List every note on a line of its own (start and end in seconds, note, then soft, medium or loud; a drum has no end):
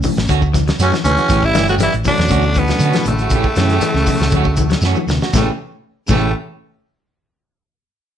0.00 0.30 B2 loud
0.00 0.29 E3 medium
0.00 0.30 A3 loud
0.00 0.30 C#4 loud
0.00 kick medium
0.00 open hi-hat medium
0.00 shekere medium
0.04 0.21 E3 medium
0.04 muted clean electric guitar stroke soft
0.04 high conga medium
0.04 low conga medium
0.16 0.27 A1 loud
0.16 muted clean electric guitar stroke medium
0.16 snare medium
0.16 shekere soft
0.27 0.70 D2 loud
0.27 0.45 D3 loud
0.27 0.43 A3 medium
0.27 0.42 C#4 medium
0.27 0.41 F#4 loud
0.27 kick medium
0.27 snare soft
0.27 closed hi-hat medium
0.27 shekere medium
0.42 muted clean electric guitar stroke soft
0.42 kick medium
0.42 shekere soft
0.53 0.62 E3 medium
0.53 muted clean electric guitar stroke soft
0.53 kick medium
0.53 snare soft
0.53 closed hi-hat medium
0.53 low conga medium
0.53 shekere medium
0.68 0.83 F#3 medium
0.68 snare medium
0.68 closed hi-hat soft
0.68 shekere soft
0.79 0.91 F#2 medium
0.79 0.93 C#3 medium
0.79 0.92 F#3 medium
0.79 0.93 A3 medium
0.79 0.92 C#4 medium
0.79 0.93 C#4 medium
0.79 0.91 F#4 medium
0.79 closed hi-hat medium
0.79 shekere loud
0.91 1.00 E3 medium
0.91 muted clean electric guitar stroke soft
0.91 snare medium
0.91 high conga medium
0.91 shekere soft
1.04 1.15 D2 medium
1.04 1.20 B2 medium
1.04 1.20 D3 medium
1.04 1.19 E3 medium
1.04 1.44 E3 medium
1.04 1.19 A3 medium
1.04 1.19 C#4 medium
1.04 1.46 C#4 loud
1.04 muted clean electric guitar stroke soft
1.04 closed hi-hat medium
1.04 low conga medium
1.04 shekere medium
1.09 1.47 C#3 medium
1.17 1.31 F#4 medium
1.17 closed hi-hat soft
1.17 high conga medium
1.17 shekere soft
1.29 1.50 A1 medium
1.29 1.73 B2 medium
1.29 1.73 E3 medium
1.29 1.44 E3 medium
1.29 1.73 A3 medium
1.29 1.43 A3 medium
1.29 1.73 C#4 medium
1.29 1.42 C#4 medium
1.29 1.42 G4 medium
1.29 kick loud
1.29 closed hi-hat medium
1.29 shekere loud
1.43 1.70 E3 medium
1.43 1.69 G3 medium
1.43 1.69 E4 loud
1.43 muted clean electric guitar stroke soft
1.43 kick medium
1.43 shekere soft
1.54 1.86 G1 loud
1.54 1.70 D3 medium
1.54 1.70 E3 medium
1.54 1.69 A3 medium
1.54 snare medium
1.54 closed hi-hat medium
1.54 high conga loud
1.54 shekere medium
1.58 1.69 C#4 medium
1.58 1.68 G4 medium
1.67 1.76 F#3 medium
1.67 1.75 A3 medium
1.67 1.80 A3 soft
1.67 1.82 C#4 medium
1.67 1.75 F#4 medium
1.67 1.81 G4 medium
1.67 closed hi-hat soft
1.67 shekere soft
1.78 1.96 E3 medium
1.78 1.93 E3 loud
1.78 1.92 G3 medium
1.78 muted clean electric guitar stroke soft
1.78 closed hi-hat medium
1.78 high conga loud
1.78 shekere medium
1.83 1.94 E4 loud
1.92 2.04 A1 medium
1.92 closed hi-hat soft
1.92 shekere soft
2.04 2.13 B2 medium
2.04 2.21 E3 medium
2.04 2.14 E3 medium
2.04 2.59 F#3 medium
2.04 2.14 A3 medium
2.04 2.14 C#4 medium
2.04 2.60 D4 loud
2.04 muted clean electric guitar stroke soft
2.04 kick medium
2.04 open hi-hat medium
2.04 high conga medium
2.04 low conga medium
2.04 shekere medium
2.09 2.60 D3 medium
2.17 2.29 E2 medium
2.17 2.32 B2 medium
2.17 2.32 E3 medium
2.17 2.32 A3 medium
2.17 2.32 C#4 medium
2.17 muted clean electric guitar stroke soft
2.17 snare medium
2.17 shekere soft
2.28 2.72 D2 loud
2.28 2.46 D3 loud
2.28 2.44 A3 medium
2.28 2.44 C#4 medium
2.28 2.44 F#4 medium
2.28 kick medium
2.28 closed hi-hat medium
2.28 shekere medium
2.33 3.13 B2 medium
2.33 3.13 E3 medium
2.33 3.14 A3 medium
2.33 3.13 C#4 medium
2.42 shekere soft
2.46 muted clean electric guitar stroke soft
2.54 3.07 D3 medium
2.54 2.64 E3 medium
2.54 kick medium
2.54 closed hi-hat soft
2.54 shekere medium
2.59 3.08 B2 loud
2.59 3.07 B3 loud
2.59 muted clean electric guitar stroke soft
2.67 2.84 F#3 medium
2.67 snare medium
2.67 closed hi-hat soft
2.67 high conga medium
2.67 shekere soft
2.79 2.91 D3 loud
2.79 closed hi-hat medium
2.79 shekere medium
2.84 2.96 A3 medium
2.84 2.96 C#4 medium
2.84 2.97 F#4 medium
2.92 3.02 E3 medium
2.92 muted fingered electric bass stroke soft
2.92 snare medium
2.92 closed hi-hat soft
2.92 high conga medium
2.92 shekere soft
2.98 muted clean electric guitar stroke soft
3.03 3.27 A1 loud
3.03 closed hi-hat medium
3.03 shekere medium
3.08 5.06 A2 medium
3.08 5.05 C#3 medium
3.08 3.23 D3 medium
3.08 5.05 A3 loud
3.08 muted clean electric guitar stroke soft
3.08 low conga medium
3.18 closed hi-hat soft
3.18 shekere soft
3.22 3.34 C#4 soft
3.22 3.33 F#4 medium
3.30 3.42 A1 loud
3.30 kick loud
3.30 closed hi-hat medium
3.30 low conga medium
3.30 shekere medium
3.35 3.47 E3 medium
3.35 3.47 A3 medium
3.35 3.47 C#4 medium
3.35 3.47 G4 loud
3.43 kick medium
3.43 shekere soft
3.48 muted clean electric guitar stroke soft
3.55 3.77 F#2 loud
3.55 3.79 B2 medium
3.55 3.73 D3 medium
3.55 3.79 E3 medium
3.55 3.79 A3 medium
3.55 3.79 C#4 medium
3.55 snare medium
3.55 closed hi-hat medium
3.55 high conga loud
3.55 shekere medium
3.61 3.72 E3 medium
3.61 3.72 C#4 medium
3.61 3.71 G4 medium
3.61 muted clean electric guitar stroke medium
3.69 3.84 G4 medium
3.69 snare soft
3.69 closed hi-hat soft
3.69 shekere soft
3.73 3.84 A3 medium
3.73 3.84 C#4 medium
3.81 3.98 E3 medium
3.81 snare soft
3.81 closed hi-hat medium
3.81 high conga medium
3.81 shekere medium
3.85 muted clean electric guitar stroke soft
3.93 4.05 C#2 medium
3.93 4.33 B2 loud
3.93 4.33 E3 loud
3.93 4.33 A3 medium
3.93 4.33 C#4 loud
3.93 snare soft
3.93 shekere soft
4.06 4.23 E3 medium
4.06 muted clean electric guitar stroke soft
4.06 kick medium
4.06 open hi-hat medium
4.06 high conga medium
4.06 low conga medium
4.06 shekere medium
4.18 4.30 C#2 medium
4.18 snare medium
4.18 shekere soft
4.22 muted clean electric guitar stroke soft
4.31 4.74 D2 loud
4.31 4.48 D3 loud
4.31 kick medium
4.31 closed hi-hat medium
4.31 high conga medium
4.31 shekere medium
4.35 4.47 A3 loud
4.35 4.47 C#4 loud
4.35 4.47 F#4 loud
4.44 kick medium
4.44 shekere soft
4.56 4.66 E3 medium
4.56 kick medium
4.56 closed hi-hat medium
4.56 low conga medium
4.56 shekere medium
4.61 muted clean electric guitar stroke soft
4.69 4.86 F#3 medium
4.69 snare medium
4.69 closed hi-hat soft
4.69 high conga medium
4.69 shekere soft
4.81 4.93 F#2 loud
4.81 4.97 A3 medium
4.81 snare medium
4.81 shekere loud
4.86 4.98 C#4 medium
4.86 4.98 F#4 medium
4.95 5.03 E3 medium
4.95 high conga medium
4.95 shekere soft
4.99 muted clean electric guitar stroke medium
5.07 5.18 D2 medium
5.07 5.23 B2 medium
5.07 5.24 D3 medium
5.07 5.23 E3 medium
5.07 5.23 A3 medium
5.07 5.23 C#4 medium
5.07 muted clean electric guitar stroke soft
5.07 snare medium
5.07 low conga medium
5.07 shekere medium
5.21 5.34 F#4 medium
5.21 snare medium
5.21 high conga medium
5.21 shekere soft
5.33 5.48 A1 loud
5.33 5.43 A2 medium
5.33 5.48 A2 medium
5.33 5.49 B2 medium
5.33 5.49 C#3 medium
5.33 5.49 E3 medium
5.33 5.48 A3 medium
5.33 5.50 A3 medium
5.33 5.49 A3 medium
5.33 5.49 C#4 medium
5.33 5.50 C#4 medium
5.33 5.51 G4 medium
5.33 kick medium
5.33 snare medium
5.33 low conga loud
5.33 shekere loud
6.07 6.33 A1 loud
6.07 6.24 A2 medium
6.07 6.33 A2 medium
6.07 6.33 B2 medium
6.07 6.31 C#3 medium
6.07 6.29 E3 loud
6.07 6.33 E3 medium
6.07 6.33 A3 medium
6.07 6.30 A3 medium
6.07 6.33 C#4 medium
6.07 6.30 C#4 loud
6.07 kick medium
6.07 crash medium
6.07 low conga loud
6.07 shekere loud
6.11 6.34 A3 medium
6.11 6.31 G4 medium